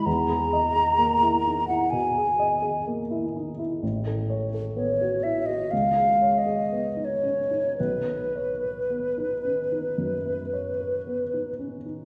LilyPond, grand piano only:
\new Staff \with { instrumentName = "Grand piano" } { \time 4/4 \key e \major \tempo 4 = 61 e,16 gis'16 dis''16 gis'16 ais16 e'16 dis'16 e'16 b,16 gis'16 dis''16 gis'16 ais16 e'16 dis'16 e'16 | a,,16 a'16 cis''16 a'16 b16 fis'16 e'16 fis'16 cis,16 gis'16 cis''16 gis'16 b16 dis'16 cis'16 dis'16 | b,,16 b'16 cis''16 b'16 b16 dis'16 cis'16 dis'16 fis,16 b'16 cis''16 b'16 b16 dis'16 cis'16 dis'16 | }